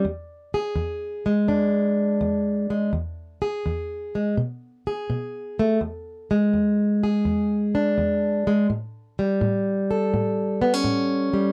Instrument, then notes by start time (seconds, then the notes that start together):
steel-string acoustic guitar
0.05 E2
0.54 G#4
0.76 E2
1.26 G#3
1.48 E2 D4
2.21 E2
2.70 G#3
2.93 E2
3.42 G#4
3.66 E2
4.15 G#3
4.37 B2
4.87 G#4
5.10 B2
5.59 A3
5.81 E2
6.31 G#3
6.53 E2
7.03 G#4
7.25 E2
7.75 D4
7.98 E2
8.47 G#3
8.70 A2
9.19 G3
9.41 A2
9.91 A4
10.14 A2
10.62 B3
10.74 C#4
10.84 A2
11.33 G3